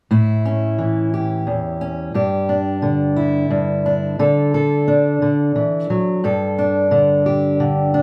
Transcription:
0.11 1.47 A2 medium
0.11 1.13 E4 medium
0.45 1.80 C#4 soft
0.79 2.11 E3 soft
1.14 2.11 G4 soft
1.47 2.14 E2 soft
1.81 2.11 C#4 soft
2.14 3.49 G2 medium
2.14 3.16 G4 soft
2.49 3.85 D4 soft
2.82 4.18 D3 medium
3.16 4.19 E4 soft
3.50 4.15 G2 medium
3.86 4.88 D4 soft
4.19 5.21 D3 medium
4.19 4.54 A4 medium
4.54 6.24 A4 medium
4.88 6.20 D4 medium
5.22 5.55 D3 medium
5.56 5.90 E3 soft
5.90 6.24 F#3 medium
6.24 8.02 G2 medium
6.24 7.25 A4 medium
6.58 7.93 D4 soft
6.91 7.59 D3 medium
7.26 8.02 G4 soft
7.60 8.02 D3 medium
7.94 8.02 D4 soft

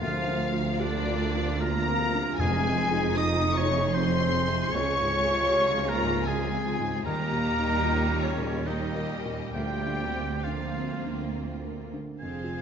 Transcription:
0.01 2.34 D2 medium
0.01 2.39 D2 medium
0.01 4.68 C3 medium
0.01 0.77 F3 loud
0.01 4.68 F3 medium
0.01 0.51 F4 loud
0.01 2.35 F4 medium
0.01 2.35 A#4 medium
0.01 0.77 F5 loud
0.01 0.51 F5 loud
0.27 0.69 D3 medium
0.53 0.95 F4 medium
0.79 1.61 D3 medium
0.79 1.62 D4 medium
0.79 1.06 G4 medium
0.79 1.62 D5 loud
0.79 1.61 D5 loud
1.06 1.50 F4 medium
1.34 1.77 D3 medium
1.60 2.22 A#3 loud
1.60 2.03 F4 medium
1.60 2.42 A#4 loud
1.60 2.41 A#5 loud
1.60 2.39 A#5 loud
1.89 2.29 C4 medium
2.14 2.40 D3 medium
2.37 4.68 F1 loud
2.37 3.51 F2 loud
2.37 4.68 F2 loud
2.37 3.15 G#3 loud
2.37 4.69 D#4 loud
2.37 7.03 G#4 medium
2.37 3.17 G#4 loud
2.37 3.14 G#5 loud
2.37 3.19 G#5 loud
2.41 4.69 F2 medium
2.68 3.08 C3 medium
2.92 3.33 D#4 medium
3.15 3.55 D#4 loud
3.15 3.43 F4 medium
3.15 3.59 D#5 loud
3.15 3.54 D#6 loud
3.15 3.57 D#6 loud
3.44 3.84 D#4 medium
3.53 3.93 C#6 loud
3.53 3.95 C#6 loud
3.57 3.96 C#5 loud
3.57 3.95 C#5 loud
3.69 4.10 C3 medium
3.92 4.72 C4 loud
3.92 4.36 D#4 medium
3.92 4.71 C5 loud
3.92 4.71 C6 loud
3.92 4.74 C6 loud
4.21 4.62 C4 medium
4.48 4.73 C3 medium
4.70 7.02 C#2 loud
4.70 7.03 C3 loud
4.70 7.03 F3 loud
4.70 7.03 F4 medium
4.70 5.90 C#5 loud
4.70 5.88 C#5 loud
4.70 5.88 C#6 loud
4.75 7.04 C#2 medium
5.00 5.41 G#2 medium
5.26 5.66 F4 medium
5.51 5.76 G4 medium
5.76 6.17 F4 medium
5.87 6.28 A#3 loud
5.87 6.29 A#4 loud
5.87 6.27 A#5 loud
5.87 6.29 A#5 loud
6.02 6.43 G#2 medium
6.24 7.06 G#3 medium
6.24 6.69 F4 medium
6.24 7.05 G#4 medium
6.24 7.04 G#5 loud
6.24 7.05 G#5 medium
6.53 6.95 C4 medium
6.80 7.06 G#2 medium
7.04 9.51 D#2 medium
7.04 8.63 G3 loud
7.04 8.22 A#3 loud
7.04 8.63 A#3 loud
7.04 8.63 D#4 medium
7.04 8.63 G4 medium
7.04 8.26 A#4 loud
7.04 8.22 A#5 loud
7.04 7.98 A#5 loud
7.32 7.74 A#2 medium
7.59 8.01 D#4 medium
7.84 8.11 F4 medium
8.11 8.55 D#4 medium
8.22 8.67 C#3 medium
8.22 8.69 C#4 medium
8.22 8.66 C#5 loud
8.22 8.67 C#5 medium
8.37 8.83 A#2 medium
8.65 9.37 D#3 medium
8.65 9.53 G3 medium
8.65 9.53 A#3 medium
8.65 9.09 D#4 medium
8.65 9.24 D#4 medium
8.65 9.14 D#4 medium
8.65 9.53 G4 medium
8.65 9.23 D#5 medium
8.65 9.54 D#5 medium
8.95 9.43 A#3 medium
9.10 9.55 C#4 medium
9.25 9.55 A#2 soft
9.52 11.94 D2 medium
9.52 11.95 D2 medium
9.52 12.16 D2 medium
9.52 10.42 G3 medium
9.52 10.43 A#3 medium
9.52 10.44 C4 medium
9.52 10.44 F4 medium
9.52 10.45 G4 loud
9.52 10.41 G5 loud
9.52 10.45 G5 medium
9.86 10.33 D3 medium
10.15 10.63 C4 medium
10.42 11.96 A#3 medium
10.42 11.96 C4 medium
10.42 11.33 F4 medium
10.42 11.96 F4 medium
10.42 11.32 F5 medium
10.42 11.33 F5 medium
10.47 11.35 F3 medium
10.47 10.75 D4 soft
10.77 11.23 C4 medium
11.06 11.52 D3 soft
11.34 11.81 C4 medium
11.64 12.10 A#3 soft
11.93 12.21 D3 soft
12.20 12.62 F1 medium
12.20 12.62 F2 medium
12.20 12.59 C4 medium
12.20 12.62 G#4 medium
12.20 12.62 C5 medium
12.20 12.62 F5 medium
12.20 12.62 G#5 loud
12.44 12.62 F4 soft

